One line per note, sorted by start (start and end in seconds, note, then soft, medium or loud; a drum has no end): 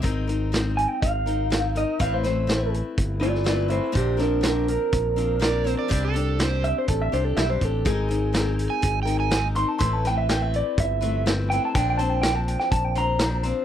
0.02 0.85 G#1 medium
0.02 0.27 G#3 medium
0.02 0.28 C4 medium
0.02 0.28 D#4 medium
0.02 0.26 A#4 medium
0.02 kick loud
0.02 closed hi-hat medium
0.27 0.52 C4 soft
0.27 0.52 D#4 soft
0.27 0.53 A#4 soft
0.27 closed hi-hat medium
0.52 1.26 G#3 medium
0.52 1.28 C4 medium
0.52 1.26 D#4 medium
0.52 1.25 A#4 medium
0.52 snare loud
0.52 closed hi-hat medium
0.77 0.88 G#5 medium
0.77 closed hi-hat medium
0.88 1.01 G5 medium
1.02 1.83 G#1 medium
1.02 1.73 F5 medium
1.02 kick loud
1.02 closed hi-hat medium
1.26 1.51 C4 soft
1.26 1.51 D#4 soft
1.26 1.51 A#4 medium
1.26 closed hi-hat medium
1.50 1.75 G#3 medium
1.50 1.76 C4 medium
1.50 1.76 D#4 medium
1.50 1.74 A#4 medium
1.50 snare loud
1.50 closed hi-hat medium
1.75 1.99 C4 soft
1.75 1.99 D#4 soft
1.75 2.00 A#4 soft
1.75 2.00 D#5 medium
1.75 closed hi-hat medium
1.99 2.81 A1 medium
1.99 2.24 A2 medium
1.99 2.24 E3 medium
1.99 2.25 A3 medium
1.99 2.24 C4 medium
1.99 2.23 E4 medium
1.99 2.22 B4 medium
1.99 2.12 F5 medium
1.99 kick medium
1.99 closed hi-hat medium
2.14 2.24 C5 medium
2.23 2.46 A3 soft
2.23 2.46 C4 soft
2.23 2.47 E4 soft
2.23 2.48 B4 soft
2.23 2.72 C5 medium
2.23 snare soft
2.23 closed hi-hat medium
2.47 3.22 A3 medium
2.47 3.21 C4 medium
2.47 3.20 E4 medium
2.47 3.19 B4 medium
2.47 snare loud
2.47 closed hi-hat medium
2.74 closed hi-hat medium
2.98 3.79 G1 medium
2.98 kick loud
2.98 closed hi-hat medium
3.20 3.43 A3 soft
3.20 3.44 C4 soft
3.20 3.44 E4 soft
3.20 3.46 F4 medium
3.20 3.46 B4 medium
3.20 3.46 D5 medium
3.20 closed hi-hat medium
3.35 snare soft
3.44 3.69 A3 medium
3.44 3.69 C4 medium
3.44 3.67 E4 medium
3.44 3.70 F4 medium
3.44 3.67 B4 medium
3.44 3.71 D5 medium
3.44 snare loud
3.44 closed hi-hat medium
3.68 3.92 A3 soft
3.68 3.92 C4 soft
3.68 3.93 E4 soft
3.68 3.93 E4 medium
3.68 3.93 B4 soft
3.68 3.95 C5 medium
3.68 closed hi-hat medium
3.92 4.76 A#1 medium
3.92 4.19 A#2 medium
3.92 4.19 D3 medium
3.92 4.18 F3 medium
3.92 4.17 C4 medium
3.92 4.17 D4 medium
3.92 4.16 A#4 medium
3.92 kick loud
3.92 closed hi-hat medium
3.97 4.19 G4 medium
3.97 4.20 C5 medium
4.17 4.40 F3 soft
4.17 4.41 C4 soft
4.17 4.42 D4 soft
4.17 4.43 D4 medium
4.17 4.42 A#4 soft
4.17 4.44 A#4 medium
4.17 snare soft
4.17 closed hi-hat medium
4.41 5.16 F3 medium
4.41 5.17 C4 medium
4.41 5.15 D4 medium
4.41 5.15 A#4 medium
4.41 snare loud
4.41 closed hi-hat medium
4.46 4.69 D4 medium
4.46 4.68 A#4 medium
4.68 5.88 A#4 medium
4.68 closed hi-hat medium
4.92 5.74 A#1 medium
4.92 kick loud
4.92 closed hi-hat medium
5.16 5.38 F3 soft
5.16 5.40 C4 soft
5.16 5.39 D4 soft
5.16 5.40 A#4 medium
5.16 closed hi-hat medium
5.40 5.65 F3 medium
5.40 5.65 C4 medium
5.40 5.64 D4 medium
5.40 5.63 A#4 medium
5.40 5.69 D5 medium
5.40 snare loud
5.40 closed hi-hat medium
5.64 5.88 F3 soft
5.64 5.88 C4 soft
5.64 5.89 D4 soft
5.64 5.90 A#4 medium
5.64 closed hi-hat medium
5.69 5.78 C5 medium
5.79 6.03 D5 medium
5.88 6.72 C2 medium
5.88 6.14 C3 medium
5.88 6.15 G3 medium
5.88 6.15 C4 medium
5.88 6.14 D4 medium
5.88 6.13 G4 medium
5.88 kick loud
5.88 closed hi-hat medium
6.05 6.40 A4 medium
6.14 6.39 C4 soft
6.14 6.39 D4 medium
6.14 6.39 G4 medium
6.14 closed hi-hat medium
6.39 7.13 G3 medium
6.39 7.15 C4 medium
6.39 7.12 D4 medium
6.39 7.11 G4 medium
6.39 6.65 C5 medium
6.39 snare loud
6.39 closed hi-hat medium
6.64 6.76 E5 medium
6.64 closed hi-hat medium
6.78 6.88 C5 medium
6.88 7.09 A1 medium
6.88 7.01 A4 medium
6.88 kick loud
6.88 closed hi-hat medium
7.02 7.13 E5 medium
7.12 7.35 C2 medium
7.12 7.37 C4 soft
7.12 7.37 D4 soft
7.12 7.37 G4 soft
7.12 7.25 C5 medium
7.12 closed hi-hat medium
7.25 7.37 A4 medium
7.37 7.59 B1 medium
7.37 7.62 G3 medium
7.37 7.62 C4 medium
7.37 7.62 D4 medium
7.37 7.61 G4 medium
7.37 7.49 E5 medium
7.37 snare medium
7.37 closed hi-hat medium
7.50 7.65 C5 medium
7.61 7.84 A1 medium
7.61 7.84 C4 soft
7.61 7.86 D4 soft
7.61 7.86 G4 soft
7.61 7.87 A4 medium
7.61 kick medium
7.61 closed hi-hat medium
7.85 8.67 G#1 medium
7.85 8.10 G#3 medium
7.85 8.10 C4 medium
7.85 8.09 D#4 medium
7.85 9.29 G#4 medium
7.85 8.07 A#4 medium
7.85 kick loud
7.85 closed hi-hat medium
8.09 8.32 C4 soft
8.09 8.33 D#4 soft
8.09 8.34 A#4 medium
8.09 closed hi-hat medium
8.33 9.07 G#3 medium
8.33 9.07 C4 medium
8.33 9.05 D#4 medium
8.33 9.04 A#4 medium
8.33 snare loud
8.33 closed hi-hat medium
8.59 closed hi-hat medium
8.70 9.00 G#5 medium
8.82 9.64 G#1 medium
8.82 kick loud
8.82 closed hi-hat medium
9.03 9.30 D#4 medium
9.03 9.31 A#4 medium
9.03 9.17 G5 medium
9.07 9.30 C4 soft
9.07 closed hi-hat medium
9.20 9.46 G#5 medium
9.31 9.56 G#3 medium
9.31 9.56 C4 medium
9.31 9.55 D#4 medium
9.31 9.54 A#4 medium
9.31 snare loud
9.31 closed hi-hat medium
9.55 9.79 C4 soft
9.55 9.80 D#4 soft
9.55 9.80 A#4 soft
9.55 9.68 C6 medium
9.55 closed hi-hat medium
9.68 9.79 A5 medium
9.78 10.61 A1 medium
9.78 10.04 A2 medium
9.78 10.04 E3 medium
9.78 10.04 A3 medium
9.78 10.05 C4 medium
9.78 10.04 E4 medium
9.78 10.04 B4 medium
9.78 9.93 C6 medium
9.78 kick loud
9.78 closed hi-hat medium
9.93 10.05 A5 medium
10.05 10.28 A3 soft
10.05 10.30 C4 soft
10.05 10.30 E4 soft
10.05 10.29 B4 soft
10.05 10.17 G5 medium
10.05 snare soft
10.05 closed hi-hat medium
10.18 10.30 E5 medium
10.29 11.02 A3 medium
10.29 11.02 C4 medium
10.29 11.00 E4 medium
10.29 11.00 B4 medium
10.29 10.42 G5 medium
10.29 snare loud
10.29 closed hi-hat medium
10.42 10.54 E5 medium
10.54 10.79 D5 medium
10.54 closed hi-hat medium
10.78 11.58 G1 medium
10.78 11.26 E5 medium
10.78 kick loud
10.78 closed hi-hat medium
11.01 11.25 A3 soft
11.01 11.25 C4 soft
11.01 11.26 E4 soft
11.01 11.26 B4 medium
11.01 closed hi-hat medium
11.26 11.51 A3 medium
11.26 11.51 C4 medium
11.26 11.52 E4 medium
11.26 11.52 B4 medium
11.26 snare loud
11.26 closed hi-hat medium
11.50 11.75 C4 soft
11.50 11.77 E4 soft
11.50 11.76 B4 soft
11.50 11.62 G5 medium
11.50 closed hi-hat medium
11.54 11.76 A3 soft
11.65 11.75 A5 medium
11.75 12.55 A#1 medium
11.75 11.99 A#2 medium
11.75 11.99 D3 medium
11.75 12.00 F3 medium
11.75 11.99 C4 medium
11.75 11.98 D4 medium
11.75 11.97 C5 medium
11.75 11.87 G5 medium
11.75 kick loud
11.75 closed hi-hat medium
11.90 11.97 G5 medium
11.98 12.23 F3 soft
11.98 12.24 C4 soft
11.98 12.24 D4 soft
11.98 12.23 C5 medium
11.98 12.10 A5 medium
11.98 closed hi-hat medium
12.10 12.20 G5 medium
12.22 12.96 F3 medium
12.22 12.97 C4 medium
12.22 12.96 D4 medium
12.22 12.35 G5 medium
12.22 snare loud
12.22 closed hi-hat medium
12.26 12.95 C5 medium
12.35 12.48 A5 medium
12.48 12.58 G5 medium
12.48 closed hi-hat medium
12.60 12.71 G5 medium
12.60 snare soft
12.71 13.52 A#1 medium
12.71 12.84 A5 medium
12.71 kick loud
12.71 closed hi-hat medium
12.84 12.96 G5 medium
12.95 13.20 F3 soft
12.95 13.21 C4 soft
12.95 13.21 D4 medium
12.95 13.20 C5 medium
12.95 13.44 A#5 medium
12.95 closed hi-hat medium
13.19 13.45 F3 medium
13.19 13.44 C4 medium
13.19 snare loud
13.19 closed hi-hat medium
13.23 13.44 D4 medium
13.23 13.42 C5 medium
13.43 13.65 F3 soft
13.43 13.65 C4 soft
13.43 13.65 D4 soft
13.43 13.65 C5 medium
13.43 closed hi-hat medium